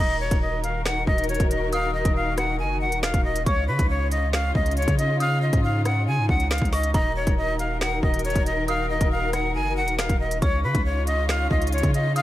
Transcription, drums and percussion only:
0.31 kick, closed hi-hat
0.64 closed hi-hat
0.86 finger snap, snare
1.07 kick
1.18 closed hi-hat
1.24 closed hi-hat
1.29 closed hi-hat
1.34 closed hi-hat
1.40 kick, closed hi-hat
1.51 closed hi-hat
1.73 closed hi-hat
2.05 kick, closed hi-hat
2.38 cross-stick, closed hi-hat
2.92 closed hi-hat
3.03 finger snap, snare, closed hi-hat
3.14 kick, closed hi-hat
3.36 closed hi-hat
3.46 kick, closed hi-hat
3.79 kick, closed hi-hat
4.12 closed hi-hat
4.33 finger snap, snare
4.55 kick
4.66 closed hi-hat
4.71 closed hi-hat
4.77 closed hi-hat
4.82 closed hi-hat
4.88 kick, closed hi-hat
4.99 closed hi-hat
5.20 closed hi-hat
5.53 kick, closed hi-hat
5.85 cross-stick, closed hi-hat
6.29 kick
6.40 closed hi-hat
6.51 finger snap, snare, closed hi-hat
6.58 kick, closed hi-hat
6.65 closed hi-hat
6.73 snare, open hi-hat
6.83 closed hi-hat
6.94 kick, closed hi-hat
7.27 kick, closed hi-hat
7.59 closed hi-hat
7.81 finger snap, snare
8.03 kick
8.14 closed hi-hat
8.19 closed hi-hat
8.25 closed hi-hat
8.30 closed hi-hat
8.36 kick, closed hi-hat
8.46 closed hi-hat
8.68 closed hi-hat
9.01 kick, closed hi-hat
9.33 cross-stick, closed hi-hat
9.88 closed hi-hat
9.99 finger snap, snare, closed hi-hat
10.09 kick, closed hi-hat
10.31 closed hi-hat
10.42 kick, closed hi-hat
10.75 kick, closed hi-hat
11.07 closed hi-hat
11.29 finger snap, snare
11.51 kick
11.62 closed hi-hat
11.67 closed hi-hat
11.73 closed hi-hat
11.78 closed hi-hat
11.83 kick, closed hi-hat
11.94 closed hi-hat
12.16 closed hi-hat

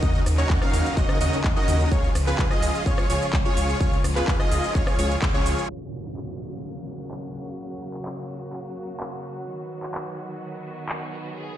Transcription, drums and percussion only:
0.03 kick, cabasa
0.15 cabasa
0.26 cross-stick, open hi-hat, ride, cabasa
0.38 clap, cabasa
0.50 kick, clap, cabasa
0.62 cross-stick, cabasa
0.73 open hi-hat, ride, cabasa
0.86 cabasa
0.97 kick, clap, cabasa
1.09 cross-stick, cabasa
1.21 open hi-hat, ride, cabasa
1.33 cabasa
1.44 kick, clap, cabasa
1.57 cabasa
1.68 open hi-hat, ride, cabasa
1.80 cabasa
1.92 kick, cabasa
2.04 cabasa
2.15 cross-stick, open hi-hat, ride, cabasa
2.27 clap, cabasa
2.39 kick, clap, cabasa
2.51 cross-stick, cabasa
2.62 open hi-hat, ride, cabasa
2.75 cabasa
2.86 kick, cabasa
2.98 cross-stick, cabasa
3.10 open hi-hat, ride, cabasa
3.22 cabasa
3.33 kick, clap, cabasa
3.46 cabasa
3.57 open hi-hat, ride, cabasa
3.69 cabasa
3.81 kick, cabasa
3.93 cabasa
4.04 cross-stick, open hi-hat, ride, cabasa
4.16 clap, cabasa
4.28 kick, clap, cabasa
4.40 cross-stick, cabasa
4.52 open hi-hat, ride, cabasa
4.64 cabasa
4.75 kick, clap, cabasa
4.87 cross-stick, cabasa
4.99 open hi-hat, ride, cabasa
5.11 cabasa
5.22 kick, clap, cabasa
5.35 cabasa
5.46 open hi-hat, ride, cabasa
5.58 cabasa
6.05 clap
6.17 clap
6.88 cabasa
7.11 clap
7.35 cabasa
7.83 cabasa
7.94 clap
8.06 clap
8.30 cabasa
8.53 clap
8.77 cabasa
8.89 cabasa
9.00 clap
9.24 cabasa
9.36 cabasa
9.48 cabasa
9.60 cabasa
9.72 cabasa
9.83 clap, cabasa
9.95 clap
10.07 cabasa
10.19 cabasa
10.31 cabasa
10.43 cabasa
10.54 cabasa
10.66 cabasa
10.78 cabasa
10.89 clap, cabasa
11.02 cabasa
11.13 cabasa
11.25 cabasa
11.37 cabasa
11.49 cabasa

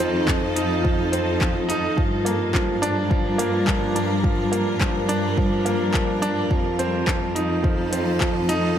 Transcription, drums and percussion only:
0.00 closed hi-hat
0.28 kick, clap
0.56 closed hi-hat
0.85 kick
1.13 closed hi-hat
1.41 kick, clap
1.70 closed hi-hat
1.98 kick
2.26 closed hi-hat
2.54 kick, clap
2.83 closed hi-hat
3.11 kick
3.39 closed hi-hat
3.67 kick, clap
3.96 closed hi-hat
4.24 kick
4.53 closed hi-hat
4.81 kick, clap
5.09 closed hi-hat
5.37 kick
5.66 closed hi-hat
5.94 kick, clap
6.22 closed hi-hat
6.51 kick
6.79 closed hi-hat
7.07 kick, clap
7.36 closed hi-hat
7.64 kick
7.93 closed hi-hat
8.21 kick, clap
8.49 closed hi-hat

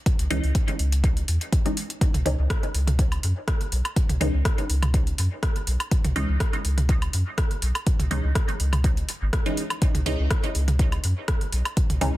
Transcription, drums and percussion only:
0.06 kick, closed hi-hat
0.19 closed hi-hat
0.31 open hi-hat
0.44 open hi-hat
0.55 kick, closed hi-hat
0.68 closed hi-hat
0.79 open hi-hat
0.92 closed hi-hat
1.04 kick, closed hi-hat
1.17 closed hi-hat
1.28 open hi-hat
1.41 closed hi-hat
1.52 kick, closed hi-hat
1.66 closed hi-hat
1.77 open hi-hat
1.90 closed hi-hat
2.01 kick, closed hi-hat
2.14 closed hi-hat, mid tom
2.26 mid tom, open hi-hat
2.50 kick, cross-stick, closed hi-hat
2.63 closed hi-hat
2.75 open hi-hat
2.87 closed hi-hat, mid tom
2.99 kick, closed hi-hat
3.12 closed hi-hat, low woodblock
3.23 open hi-hat
3.48 kick, cross-stick, closed hi-hat
3.61 closed hi-hat
3.72 open hi-hat
3.85 closed hi-hat, low woodblock
3.96 kick, closed hi-hat
4.09 closed hi-hat, mid tom
4.21 mid tom, open hi-hat
4.45 kick, cross-stick, closed hi-hat
4.58 closed hi-hat
4.70 open hi-hat
4.83 closed hi-hat, mid tom, low woodblock
4.94 kick, closed hi-hat
5.07 closed hi-hat
5.18 open hi-hat
5.43 kick, cross-stick, closed hi-hat
5.56 closed hi-hat
5.67 open hi-hat
5.80 closed hi-hat, low woodblock
5.91 kick, closed hi-hat
6.05 closed hi-hat, mid tom
6.16 mid tom, open hi-hat
6.40 kick, cross-stick, closed hi-hat
6.53 closed hi-hat
6.65 open hi-hat
6.78 closed hi-hat, mid tom
6.89 kick, closed hi-hat
7.02 closed hi-hat, low woodblock
7.13 open hi-hat
7.38 kick, cross-stick, closed hi-hat
7.51 closed hi-hat
7.62 open hi-hat
7.75 closed hi-hat, low woodblock
7.87 kick, closed hi-hat
8.00 closed hi-hat, mid tom
8.11 mid tom, open hi-hat
8.35 kick, cross-stick, closed hi-hat
8.48 closed hi-hat
8.60 open hi-hat
8.73 closed hi-hat, mid tom, low woodblock
8.84 kick, closed hi-hat
8.97 closed hi-hat
9.09 open hi-hat
9.33 kick, cross-stick, closed hi-hat
9.46 closed hi-hat
9.57 open hi-hat
9.70 closed hi-hat, low woodblock
9.82 kick, closed hi-hat
9.95 closed hi-hat, mid tom
10.06 mid tom, open hi-hat
10.31 kick, cross-stick, closed hi-hat
10.44 closed hi-hat
10.55 open hi-hat
10.68 closed hi-hat, mid tom
10.79 kick, closed hi-hat
10.92 closed hi-hat, low woodblock
11.04 open hi-hat
11.28 kick, cross-stick, closed hi-hat
11.41 closed hi-hat
11.52 open hi-hat
11.65 closed hi-hat, low woodblock
11.77 kick, closed hi-hat
11.90 closed hi-hat, mid tom
12.01 mid tom, open hi-hat

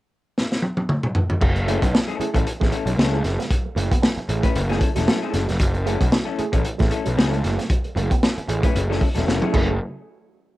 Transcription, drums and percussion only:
0.37 snare
0.52 snare
0.62 high tom
0.77 high tom
0.89 mid tom
1.03 mid tom
1.15 floor tom
1.30 floor tom
1.41 kick, crash
1.56 closed hi-hat
1.68 closed hi-hat
1.82 kick, closed hi-hat
1.95 snare
2.09 closed hi-hat
2.21 closed hi-hat
2.35 kick, closed hi-hat
2.47 closed hi-hat
2.61 kick, snare
2.72 closed hi-hat
2.87 closed hi-hat
2.99 snare
3.24 snare, closed hi-hat
3.40 snare, closed hi-hat
3.51 kick, closed hi-hat
3.78 closed hi-hat
3.92 kick, closed hi-hat
4.03 snare
4.18 closed hi-hat
4.29 closed hi-hat
4.43 kick, closed hi-hat
4.55 closed hi-hat
4.70 snare, closed hi-hat
4.81 kick, closed hi-hat
4.96 snare, closed hi-hat
5.08 snare
5.34 snare, closed hi-hat
5.49 snare, closed hi-hat
5.60 kick, closed hi-hat
5.74 closed hi-hat
5.87 closed hi-hat
6.01 kick, closed hi-hat
6.12 snare
6.39 closed hi-hat
6.53 kick, closed hi-hat
6.65 closed hi-hat
6.79 kick, snare, closed hi-hat
6.91 closed hi-hat
7.06 closed hi-hat
7.19 snare
7.33 closed hi-hat
7.44 snare, closed hi-hat
7.59 snare, closed hi-hat
7.70 kick, closed hi-hat
7.84 closed hi-hat
7.97 closed hi-hat
8.11 kick, closed hi-hat
8.23 snare
8.38 closed hi-hat
8.49 closed hi-hat
8.63 kick, closed hi-hat
8.76 closed hi-hat
8.92 snare
9.01 kick, open hi-hat
9.15 snare, closed hi-hat
9.28 snare
9.42 high tom
9.54 kick, crash

